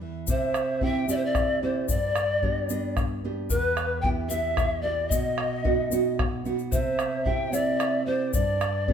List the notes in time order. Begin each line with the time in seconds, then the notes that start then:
Already playing: E2
0.01 E3
0.27 C3 C5 E5, bombo low, shaker
0.54 bombo rim, shaker
0.81 C4 E4 G4 E5 G5, bombo low
1.08 C4 E4 G4 D5 E5, shaker
1.15 C5 E5
1.24 D5 E5
1.35 bombo rim, bombo low, shaker
1.62 C4 E4 G4 C5 D5
1.89 G2 D5, bombo low, shaker
2.16 bombo rim, shaker
2.42 B3 D4 G4, bombo rim, bombo low
2.69 B3 D4 G4, shaker
2.97 bombo rim, bombo low, shaker
3.24 B3 D4 G4
3.50 E2 B4, bombo low, shaker
3.77 bombo rim, shaker
4.01 B3 E4 G4 G5, bombo rim, bombo low
4.28 B3 E4 G4 E5, shaker
4.57 bombo rim, bombo low, shaker
4.82 B3 E4 G4 D5
5.09 B2 D#5, bombo low, shaker
5.38 bombo rim
5.64 B3 D#4 F#4, bombo low
5.92 B3 D#4 F#4, shaker
6.19 bombo rim, bombo low
6.45 B3 D#4 F#4, shaker
6.59 shaker
6.72 C3 C5 E5, bombo low, shaker
6.99 bombo rim, shaker
7.24 C4 E4 G4 E5 G5, bombo rim, bombo low
7.52 C4 E4 G4 D5 E5, shaker
7.80 bombo rim, shaker
8.06 C4 E4 G4 C5 D5
8.33 G2 D5, bombo low, shaker
8.61 bombo rim, shaker
8.88 B3 D4 G4, bombo rim, bombo low